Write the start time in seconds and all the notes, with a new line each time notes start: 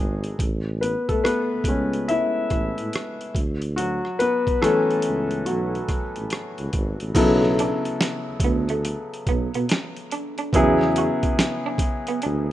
Already playing: F#3 G#3 D4 F#4 G#4
0.00 G#1
0.24 closed hi-hat
0.39 A1, kick, closed hi-hat
0.81 B3 B4, closed hi-hat
1.09 C#2 A3 A4, kick, closed hi-hat
1.24 B3 B4, cross-stick, closed hi-hat
1.53 C#2
1.64 C#2 G#3, kick, closed hi-hat
1.68 B3 C#4
1.93 closed hi-hat
2.08 E4 E5, closed hi-hat
2.50 A1, kick, cross-stick, closed hi-hat
2.78 A2, closed hi-hat
2.93 cross-stick, closed hi-hat
3.21 closed hi-hat
3.35 D2, kick, closed hi-hat
3.62 closed hi-hat
3.76 F#3 F#4, closed hi-hat
4.05 cross-stick
4.19 B3 B4, closed hi-hat
4.47 C#2, kick, closed hi-hat
4.62 E3 F#3 A3 C#4 A4, cross-stick, closed hi-hat
4.91 C#2, closed hi-hat
5.02 C#2, closed hi-hat
5.31 closed hi-hat
5.46 B1 F#3 F#4, closed hi-hat
5.75 closed hi-hat
5.88 kick, cross-stick, closed hi-hat
6.16 A1, closed hi-hat
6.30 cross-stick, closed hi-hat
6.58 C#2, closed hi-hat
6.73 G#1, kick, closed hi-hat
7.00 A1, closed hi-hat
7.14 B1 C#3 F#3 B3 E4 A4, kick, closed hi-hat, crash
7.43 snare
7.59 D4, closed hi-hat
7.85 D2, closed hi-hat
8.01 muted clean electric guitar stroke, snare, closed hi-hat
8.29 D2
8.40 D2, kick, closed hi-hat
8.44 B3
8.69 A3, closed hi-hat
8.85 muted clean electric guitar stroke, closed hi-hat
9.14 closed hi-hat
9.27 B1 B3, kick, closed hi-hat
9.54 B2 B3, closed hi-hat
9.69 muted clean electric guitar stroke, snare, closed hi-hat
9.96 closed hi-hat
10.11 D4, closed hi-hat
10.38 D4, closed hi-hat
10.53 E2 C#3 F#3 B3 E4 G#4, kick, closed hi-hat
10.81 snare
10.96 F#4, closed hi-hat
11.23 D2, kick, closed hi-hat
11.39 snare, closed hi-hat
11.66 D4
11.78 kick, closed hi-hat
11.82 muted clean electric guitar stroke
12.07 B3, closed hi-hat
12.22 D2 D4, closed hi-hat